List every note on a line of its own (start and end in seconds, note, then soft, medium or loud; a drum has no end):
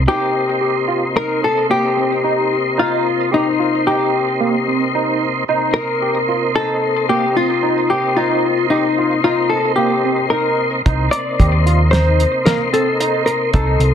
0.07 5.44 C3 medium
0.07 5.44 A#3 soft
0.07 0.35 D#4 medium
0.07 5.44 D#4 soft
0.07 1.16 G4 medium
0.07 5.44 C5 medium
0.61 0.75 G4 medium
0.88 1.02 F4 medium
1.15 1.43 D#4 medium
1.15 1.44 A#4 loud
1.44 1.70 A4 medium
1.69 1.83 A#3 medium
1.69 2.82 G4 medium
1.97 2.11 C4 medium
2.24 2.52 D#4 medium
2.78 3.06 D#4 medium
2.78 3.34 F4 medium
3.32 3.89 D#4 medium
3.32 3.46 G4 medium
3.59 3.73 F4 medium
3.87 4.14 D#4 medium
3.87 4.91 G4 medium
4.40 4.54 A#3 medium
4.68 4.82 C4 medium
4.95 5.22 D#4 medium
5.48 10.82 C3 medium
5.48 10.82 A#3 medium
5.48 10.82 D#4 medium
5.48 5.76 D#4 medium
5.48 10.82 C5 medium
5.74 6.51 A#4 loud
6.02 6.16 G4 medium
6.28 6.43 F4 medium
6.55 6.83 D#4 medium
6.55 7.09 A4 loud
7.09 7.23 A#3 medium
7.09 7.35 G4 medium
7.36 7.50 C4 medium
7.36 7.92 F4 medium
7.63 7.91 D#4 medium
7.90 8.18 G4 medium
8.16 8.45 D#4 medium
8.16 8.70 F4 medium
8.70 9.24 D#4 medium
8.70 8.85 G4 medium
8.98 9.12 F4 medium
9.24 9.52 D#4 medium
9.24 9.52 F4 medium
9.49 9.75 A4 medium
9.76 9.91 A#3 medium
9.76 10.30 G4 medium
10.04 10.18 C4 medium
10.30 10.59 D#4 medium
10.30 10.69 A#4 medium
10.86 11.07 C2 medium
10.86 13.94 C3 medium
10.86 13.94 A#3 medium
10.86 13.94 D#4 medium
10.86 11.13 D#4 medium
10.86 13.94 C5 medium
10.86 kick loud
10.86 closed hi-hat medium
11.11 11.91 D5 medium
11.11 closed hi-hat medium
11.39 12.24 D#2 medium
11.39 11.53 G4 medium
11.39 kick medium
11.39 closed hi-hat medium
11.66 11.80 F4 medium
11.66 closed hi-hat medium
11.91 12.20 D#4 medium
11.91 12.47 C5 medium
11.91 snare medium
11.91 closed hi-hat medium
12.20 closed hi-hat medium
12.45 12.60 A#3 medium
12.45 12.71 A#4 medium
12.45 snare loud
12.45 closed hi-hat medium
12.73 12.87 C4 medium
12.73 13.26 A4 medium
12.73 closed hi-hat medium
13.00 13.28 D#4 medium
13.00 closed hi-hat medium
13.26 13.54 A#4 medium
13.26 closed hi-hat soft
13.54 13.75 C2 loud
13.54 13.81 D#4 medium
13.54 13.94 A4 medium
13.54 kick loud
13.54 closed hi-hat medium
13.79 13.90 C2 medium
13.79 closed hi-hat medium